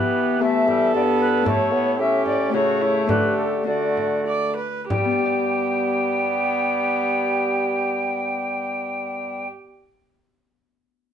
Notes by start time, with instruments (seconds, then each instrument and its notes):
Already playing: bassoon E3, harp E3 B3 E4 G4 G5, trombone B3, viola G4, recorder B4
0.39 trombone A3, harp B3 E4 G4, viola A4, recorder E5
0.67 trombone G3, frame drum
0.94 harp G2, bassoon G2, trombone B3, recorder D5
1.20 recorder B4
1.42 harp A2 A3 E4 G4
1.46 bassoon A2, trombone A3, recorder C#5 D5, frame drum
1.73 trombone B3
1.99 trombone C#4, viola G4, recorder E5
2.25 recorder D5, frame drum
2.50 harp C#3 A3 E4 G4, recorder C#5
2.54 bassoon C#3, trombone A3, viola F#4
2.81 viola E4
3.05 bassoon D3, harp A3 D4 G4, recorder B4, frame drum
3.09 harp D3, viola G4
3.37 recorder A4
3.63 harp D3 A3 D4 F#4, trombone A3, viola F#4, recorder D5
3.68 bassoon D3
3.97 frame drum
4.27 viola D5
4.56 viola B4
4.89 harp G2, bassoon G3, trombone B3, viola G4, recorder G5, frame drum
4.97 harp G3
5.05 harp B3
5.11 harp D4
5.18 harp G4
5.25 harp D5